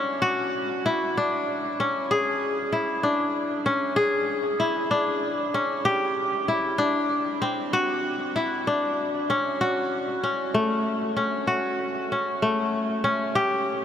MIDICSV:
0, 0, Header, 1, 2, 480
1, 0, Start_track
1, 0, Tempo, 624350
1, 184, Time_signature, 6, 3, 24, 8
1, 10646, End_track
2, 0, Start_track
2, 0, Title_t, "Kora"
2, 0, Program_c, 0, 46
2, 0, Note_on_c, 0, 61, 67
2, 0, Note_on_c, 0, 64, 70
2, 168, Note_on_c, 0, 66, 87
2, 438, Note_off_c, 0, 64, 0
2, 659, Note_on_c, 0, 64, 65
2, 903, Note_on_c, 0, 62, 76
2, 949, Note_off_c, 0, 61, 0
2, 1292, Note_off_c, 0, 66, 0
2, 1383, Note_on_c, 0, 61, 64
2, 1429, Note_off_c, 0, 62, 0
2, 1621, Note_on_c, 0, 68, 83
2, 1863, Note_off_c, 0, 64, 0
2, 2095, Note_on_c, 0, 64, 61
2, 2332, Note_on_c, 0, 62, 70
2, 2378, Note_off_c, 0, 61, 0
2, 2670, Note_off_c, 0, 68, 0
2, 2812, Note_on_c, 0, 61, 68
2, 2858, Note_off_c, 0, 62, 0
2, 3046, Note_on_c, 0, 68, 83
2, 3299, Note_off_c, 0, 64, 0
2, 3534, Note_on_c, 0, 64, 63
2, 3774, Note_on_c, 0, 62, 76
2, 3820, Note_off_c, 0, 61, 0
2, 4095, Note_off_c, 0, 68, 0
2, 4262, Note_on_c, 0, 61, 66
2, 4308, Note_off_c, 0, 62, 0
2, 4498, Note_on_c, 0, 67, 90
2, 4739, Note_off_c, 0, 64, 0
2, 4984, Note_on_c, 0, 64, 66
2, 5215, Note_on_c, 0, 62, 76
2, 5261, Note_off_c, 0, 61, 0
2, 5584, Note_off_c, 0, 67, 0
2, 5702, Note_on_c, 0, 60, 71
2, 5944, Note_on_c, 0, 66, 88
2, 6189, Note_off_c, 0, 64, 0
2, 6425, Note_on_c, 0, 64, 63
2, 6506, Note_off_c, 0, 62, 0
2, 6668, Note_on_c, 0, 62, 67
2, 7068, Note_off_c, 0, 66, 0
2, 7086, Note_off_c, 0, 60, 0
2, 7148, Note_on_c, 0, 61, 71
2, 7195, Note_off_c, 0, 62, 0
2, 7387, Note_on_c, 0, 66, 71
2, 7630, Note_off_c, 0, 64, 0
2, 7866, Note_off_c, 0, 61, 0
2, 7869, Note_on_c, 0, 61, 58
2, 8107, Note_on_c, 0, 57, 70
2, 8511, Note_off_c, 0, 66, 0
2, 8581, Note_off_c, 0, 61, 0
2, 8584, Note_on_c, 0, 61, 64
2, 8821, Note_on_c, 0, 66, 74
2, 9314, Note_off_c, 0, 61, 0
2, 9317, Note_on_c, 0, 61, 56
2, 9548, Note_off_c, 0, 57, 0
2, 9551, Note_on_c, 0, 57, 67
2, 9945, Note_off_c, 0, 66, 0
2, 10022, Note_off_c, 0, 61, 0
2, 10025, Note_on_c, 0, 61, 70
2, 10266, Note_on_c, 0, 67, 82
2, 10646, Note_off_c, 0, 57, 0
2, 10646, Note_off_c, 0, 61, 0
2, 10646, Note_off_c, 0, 67, 0
2, 10646, End_track
0, 0, End_of_file